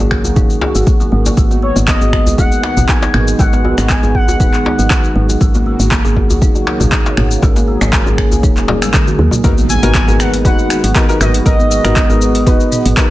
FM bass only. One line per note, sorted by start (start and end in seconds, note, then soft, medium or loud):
0.00 0.38 G#1 medium
0.36 0.47 D#1 loud
0.75 0.85 G#1 medium
1.12 1.33 G#1 medium
1.37 1.72 G#1 loud
1.76 1.96 G#1 loud
2.01 2.40 G#1 medium
2.38 2.49 D#1 loud
2.77 2.86 G#1 medium
3.14 3.34 G#1 medium
3.39 3.73 G#1 medium
3.78 3.97 G#1 loud
4.03 4.42 G#1 medium
4.40 4.51 D#1 loud
4.79 4.88 G#1 medium
5.16 5.36 G#1 loud
5.41 5.75 G#1 loud
5.80 5.99 G#1 loud
6.05 6.43 G#1 medium
6.42 6.52 D#1 loud
6.80 6.90 G#1 medium
7.17 7.38 G#1 loud
7.43 7.77 G#1 loud
7.81 8.01 G#1 loud
8.06 8.45 G#1 medium
8.43 8.83 D#1 loud
8.82 9.15 G#1 loud
9.19 9.30 D#2 loud
9.44 9.78 G#1 loud
9.83 10.02 G#1 loud
10.08 10.46 G#1 medium
10.45 10.56 D#1 loud
10.84 10.93 G#1 medium
11.21 11.41 G#1 medium
11.46 11.80 G#1 loud
11.85 12.04 G#1 loud
12.10 12.48 G#1 medium
12.47 12.57 D#1 loud
12.86 12.95 G#1 medium